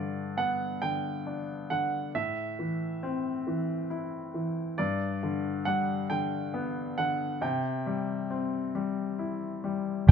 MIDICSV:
0, 0, Header, 1, 3, 480
1, 0, Start_track
1, 0, Key_signature, 1, "major"
1, 0, Tempo, 883652
1, 1167, Time_signature, 6, 3, 24, 8
1, 5494, End_track
2, 0, Start_track
2, 0, Title_t, "Grand piano"
2, 0, Program_c, 0, 0
2, 0, Note_on_c, 0, 74, 60
2, 204, Note_on_c, 0, 78, 68
2, 218, Note_off_c, 0, 74, 0
2, 444, Note_on_c, 0, 79, 69
2, 452, Note_off_c, 0, 78, 0
2, 904, Note_off_c, 0, 79, 0
2, 925, Note_on_c, 0, 78, 63
2, 1149, Note_off_c, 0, 78, 0
2, 1168, Note_on_c, 0, 76, 62
2, 2103, Note_off_c, 0, 76, 0
2, 2596, Note_on_c, 0, 74, 66
2, 3071, Note_on_c, 0, 78, 68
2, 3088, Note_off_c, 0, 74, 0
2, 3295, Note_off_c, 0, 78, 0
2, 3312, Note_on_c, 0, 79, 66
2, 3790, Note_on_c, 0, 78, 66
2, 3804, Note_off_c, 0, 79, 0
2, 4030, Note_on_c, 0, 79, 61
2, 4037, Note_off_c, 0, 78, 0
2, 4729, Note_off_c, 0, 79, 0
2, 5494, End_track
3, 0, Start_track
3, 0, Title_t, "Upright piano"
3, 0, Program_c, 1, 0
3, 0, Control_c, 1, 64, 127
3, 0, Note_on_c, 1, 43, 46
3, 0, Note_on_c, 1, 50, 37
3, 202, Note_on_c, 1, 59, 37
3, 437, Note_off_c, 1, 50, 0
3, 446, Note_on_c, 1, 50, 33
3, 687, Note_on_c, 1, 62, 34
3, 917, Note_off_c, 1, 50, 0
3, 925, Note_on_c, 1, 50, 36
3, 1145, Note_off_c, 1, 59, 0
3, 1146, Note_off_c, 1, 43, 0
3, 1153, Note_off_c, 1, 62, 0
3, 1159, Note_off_c, 1, 50, 0
3, 1165, Note_on_c, 1, 45, 41
3, 1173, Control_c, 1, 64, 0
3, 1257, Control_c, 1, 64, 127
3, 1406, Note_on_c, 1, 52, 37
3, 1645, Note_on_c, 1, 60, 41
3, 1876, Note_off_c, 1, 52, 0
3, 1884, Note_on_c, 1, 52, 41
3, 2120, Note_on_c, 1, 64, 38
3, 2350, Note_off_c, 1, 52, 0
3, 2359, Note_on_c, 1, 52, 35
3, 2578, Note_off_c, 1, 45, 0
3, 2578, Note_off_c, 1, 60, 0
3, 2584, Note_off_c, 1, 64, 0
3, 2591, Note_off_c, 1, 52, 0
3, 2600, Note_on_c, 1, 43, 50
3, 2608, Control_c, 1, 64, 0
3, 2694, Control_c, 1, 64, 127
3, 2841, Note_on_c, 1, 50, 41
3, 3079, Note_on_c, 1, 55, 42
3, 3304, Note_off_c, 1, 50, 0
3, 3313, Note_on_c, 1, 50, 40
3, 3551, Note_on_c, 1, 59, 38
3, 3784, Note_off_c, 1, 50, 0
3, 3792, Note_on_c, 1, 50, 40
3, 4008, Note_off_c, 1, 43, 0
3, 4010, Note_off_c, 1, 55, 0
3, 4015, Note_off_c, 1, 59, 0
3, 4024, Note_off_c, 1, 50, 0
3, 4027, Note_on_c, 1, 48, 52
3, 4038, Control_c, 1, 64, 0
3, 4124, Control_c, 1, 64, 127
3, 4271, Note_on_c, 1, 55, 38
3, 4510, Note_on_c, 1, 60, 41
3, 4744, Note_off_c, 1, 55, 0
3, 4752, Note_on_c, 1, 55, 41
3, 4990, Note_on_c, 1, 64, 32
3, 5227, Note_off_c, 1, 55, 0
3, 5235, Note_on_c, 1, 55, 34
3, 5454, Note_off_c, 1, 48, 0
3, 5455, Note_off_c, 1, 60, 0
3, 5461, Note_off_c, 1, 64, 0
3, 5465, Note_off_c, 1, 55, 0
3, 5473, Note_on_c, 1, 55, 50
3, 5483, Control_c, 1, 64, 0
3, 5494, Note_off_c, 1, 55, 0
3, 5494, End_track
0, 0, End_of_file